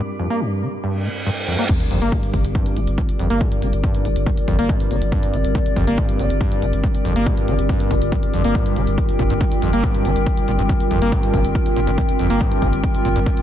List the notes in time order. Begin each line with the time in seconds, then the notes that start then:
Already playing: G2 G3 C4 F4 A#4 D5
0.19 F2
0.30 A#3
0.41 G2
0.62 D3
0.84 G2, reverse cymbal
1.05 A#2
1.26 G2
1.48 F2
1.59 A#3
1.69 G2 G3, kick, closed hi-hat, crash, sub drop
1.80 closed hi-hat
1.85 D5
1.91 G1 F2 F4, open hi-hat
2.02 G1 A#3, closed hi-hat
2.12 G2, kick, closed hi-hat
2.23 closed hi-hat
2.34 G1 D3, kick, open hi-hat
2.44 G1, closed hi-hat
2.55 G2, kick, closed hi-hat
2.66 closed hi-hat
2.76 G1 A#2, open hi-hat
2.87 G1, closed hi-hat
2.98 G2, kick, closed hi-hat
3.09 closed hi-hat
3.19 G1 F2, open hi-hat
3.30 G1 A#3, closed hi-hat
3.41 G2, kick, closed hi-hat
3.52 closed hi-hat
3.62 G1 D3, open hi-hat
3.73 G1, closed hi-hat
3.84 G2, kick, closed hi-hat
3.95 closed hi-hat
4.05 G1 A#2, open hi-hat
4.16 G1, closed hi-hat
4.26 G2, kick, closed hi-hat
4.37 closed hi-hat
4.48 G1 F2, kick, open hi-hat
4.59 G1 A#3, closed hi-hat
4.69 G2, kick, closed hi-hat
4.80 closed hi-hat
4.91 G1 D3, open hi-hat
5.02 G1, closed hi-hat
5.12 G2, kick, closed hi-hat
5.23 closed hi-hat
5.33 G1 A#2, open hi-hat
5.45 G1, closed hi-hat
5.55 G2, kick, closed hi-hat
5.66 closed hi-hat
5.76 G1 F2, kick, open hi-hat
5.87 G1 A#3, closed hi-hat
5.98 G2, kick, closed hi-hat
6.09 closed hi-hat
6.19 G1 D3, open hi-hat
6.30 G1, closed hi-hat
6.41 G2, kick, closed hi-hat
6.52 closed hi-hat
6.62 G1 A#2, open hi-hat
6.73 G1, closed hi-hat
6.84 G2, kick, closed hi-hat
6.95 closed hi-hat
7.05 G1 F2, open hi-hat
7.16 G1 A#3, closed hi-hat
7.26 G2, kick, closed hi-hat
7.37 closed hi-hat
7.48 G1 D3, open hi-hat
7.59 G1, closed hi-hat
7.69 G2, kick, closed hi-hat
7.80 closed hi-hat
7.91 G1 A#2, kick, open hi-hat
8.02 G1, closed hi-hat
8.12 G2, kick, closed hi-hat
8.23 closed hi-hat
8.34 G1 F2, open hi-hat
8.44 G1 A#3, closed hi-hat
8.55 G2, kick, closed hi-hat
8.66 closed hi-hat
8.70 G5
8.76 G1 D3, open hi-hat
8.87 G1, closed hi-hat
8.98 kick, closed hi-hat
9.09 closed hi-hat
9.19 G1 A#2, kick, open hi-hat
9.30 G1 G2, closed hi-hat
9.41 G2, kick, closed hi-hat
9.52 closed hi-hat
9.62 G1 F2, open hi-hat
9.73 G1 A#3, closed hi-hat
9.84 G2, kick, closed hi-hat
9.95 closed hi-hat
10.05 G1 D3, open hi-hat
10.16 G1, closed hi-hat
10.26 kick, closed hi-hat
10.37 closed hi-hat
10.48 G1 A#2, open hi-hat
10.59 G1 G2, closed hi-hat
10.69 G2, kick, closed hi-hat
10.80 closed hi-hat
10.91 G1 F2, open hi-hat
11.02 G1 A#3, closed hi-hat
11.12 G2, kick, closed hi-hat
11.23 closed hi-hat
11.34 G1 D3, kick, open hi-hat
11.45 G1, closed hi-hat
11.55 kick, closed hi-hat
11.66 closed hi-hat
11.76 G1 A#2, open hi-hat
11.87 G1 G2, closed hi-hat
11.98 G2, kick, closed hi-hat
12.09 closed hi-hat
12.19 G1 F2, open hi-hat
12.30 G1 A#3, closed hi-hat
12.41 G2, kick, closed hi-hat
12.52 closed hi-hat
12.62 G1 D3, kick, open hi-hat
12.73 G1, closed hi-hat
12.84 kick, closed hi-hat
12.95 closed hi-hat
13.05 G1 A#2, open hi-hat
13.16 G1 G2, closed hi-hat
13.26 G2, kick, closed hi-hat
13.37 closed hi-hat